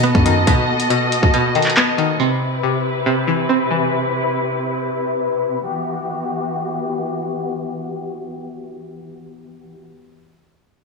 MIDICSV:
0, 0, Header, 1, 5, 480
1, 0, Start_track
1, 0, Key_signature, 1, "minor"
1, 0, Tempo, 431655
1, 526, Time_signature, 4, 2, 24, 8
1, 12054, End_track
2, 0, Start_track
2, 0, Title_t, "String section"
2, 0, Program_c, 0, 48
2, 0, Note_on_c, 0, 59, 84
2, 0, Note_on_c, 0, 66, 75
2, 0, Note_on_c, 0, 69, 75
2, 0, Note_on_c, 0, 75, 90
2, 2407, Note_off_c, 0, 59, 0
2, 2407, Note_off_c, 0, 66, 0
2, 2407, Note_off_c, 0, 69, 0
2, 2407, Note_off_c, 0, 75, 0
2, 2446, Note_on_c, 0, 48, 83
2, 2446, Note_on_c, 0, 60, 74
2, 2446, Note_on_c, 0, 64, 77
2, 2447, Note_on_c, 0, 71, 93
2, 6247, Note_off_c, 0, 60, 0
2, 6248, Note_off_c, 0, 48, 0
2, 6248, Note_off_c, 0, 64, 0
2, 6248, Note_off_c, 0, 71, 0
2, 6285, Note_on_c, 0, 52, 79
2, 6285, Note_on_c, 0, 59, 76
2, 6285, Note_on_c, 0, 66, 71
2, 6285, Note_on_c, 0, 67, 89
2, 10901, Note_off_c, 0, 52, 0
2, 10901, Note_off_c, 0, 66, 0
2, 10901, Note_off_c, 0, 67, 0
2, 10902, Note_off_c, 0, 59, 0
2, 12054, End_track
3, 0, Start_track
3, 0, Title_t, "Synth pluck"
3, 0, Program_c, 1, 84
3, 0, Note_on_c, 1, 47, 90
3, 0, Note_on_c, 1, 51, 78
3, 38, Note_on_c, 1, 59, 87
3, 273, Note_off_c, 1, 51, 0
3, 286, Note_on_c, 1, 51, 81
3, 517, Note_off_c, 1, 47, 0
3, 531, Note_on_c, 1, 47, 91
3, 991, Note_off_c, 1, 47, 0
3, 1004, Note_on_c, 1, 47, 77
3, 1242, Note_off_c, 1, 59, 0
3, 1476, Note_off_c, 1, 47, 0
3, 1486, Note_off_c, 1, 51, 0
3, 1489, Note_on_c, 1, 47, 92
3, 1729, Note_on_c, 1, 51, 80
3, 1968, Note_on_c, 1, 59, 90
3, 2190, Note_off_c, 1, 51, 0
3, 2203, Note_on_c, 1, 51, 86
3, 2443, Note_on_c, 1, 48, 100
3, 2444, Note_off_c, 1, 51, 0
3, 2447, Note_off_c, 1, 47, 0
3, 2447, Note_off_c, 1, 59, 0
3, 2916, Note_off_c, 1, 48, 0
3, 2929, Note_on_c, 1, 48, 82
3, 3392, Note_off_c, 1, 48, 0
3, 3405, Note_on_c, 1, 48, 97
3, 3642, Note_on_c, 1, 52, 78
3, 3883, Note_on_c, 1, 60, 88
3, 4109, Note_off_c, 1, 52, 0
3, 4122, Note_on_c, 1, 52, 86
3, 4605, Note_off_c, 1, 48, 0
3, 5084, Note_off_c, 1, 60, 0
3, 5324, Note_off_c, 1, 52, 0
3, 12054, End_track
4, 0, Start_track
4, 0, Title_t, "808-style bass"
4, 0, Program_c, 2, 38
4, 0, Note_on_c, 2, 47, 101
4, 137, Note_off_c, 2, 47, 0
4, 165, Note_on_c, 2, 42, 103
4, 511, Note_off_c, 2, 42, 0
4, 12054, End_track
5, 0, Start_track
5, 0, Title_t, "Drums"
5, 165, Note_on_c, 9, 36, 102
5, 276, Note_off_c, 9, 36, 0
5, 286, Note_on_c, 9, 42, 73
5, 397, Note_off_c, 9, 42, 0
5, 525, Note_on_c, 9, 36, 114
5, 526, Note_on_c, 9, 42, 82
5, 637, Note_off_c, 9, 36, 0
5, 637, Note_off_c, 9, 42, 0
5, 886, Note_on_c, 9, 42, 74
5, 997, Note_off_c, 9, 42, 0
5, 1005, Note_on_c, 9, 42, 68
5, 1117, Note_off_c, 9, 42, 0
5, 1248, Note_on_c, 9, 42, 81
5, 1359, Note_off_c, 9, 42, 0
5, 1366, Note_on_c, 9, 36, 88
5, 1477, Note_off_c, 9, 36, 0
5, 1487, Note_on_c, 9, 42, 71
5, 1598, Note_off_c, 9, 42, 0
5, 1726, Note_on_c, 9, 42, 50
5, 1806, Note_off_c, 9, 42, 0
5, 1806, Note_on_c, 9, 42, 70
5, 1845, Note_on_c, 9, 39, 69
5, 1886, Note_off_c, 9, 42, 0
5, 1886, Note_on_c, 9, 42, 88
5, 1957, Note_off_c, 9, 39, 0
5, 1966, Note_on_c, 9, 39, 114
5, 1997, Note_off_c, 9, 42, 0
5, 2078, Note_off_c, 9, 39, 0
5, 2207, Note_on_c, 9, 42, 67
5, 2318, Note_off_c, 9, 42, 0
5, 12054, End_track
0, 0, End_of_file